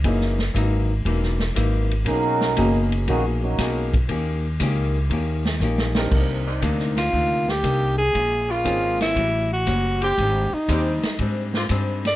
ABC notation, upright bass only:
X:1
M:4/4
L:1/8
Q:"Swing" 1/4=118
K:D#phr
V:1 name="Upright bass" clef=bass
F,,,2 G,,,2 E,,,2 G,,,2 | B,,,2 F,,,2 A,,,2 B,,,2 | D,,2 C,,2 D,,2 A,,,2 | [K:Cm] C,,2 D,,2 D,,2 C,,2 |
B,,,2 A,,,2 =A,,,2 ^F,,,2 | A,,, z E,, z A,,2 G,,2 |]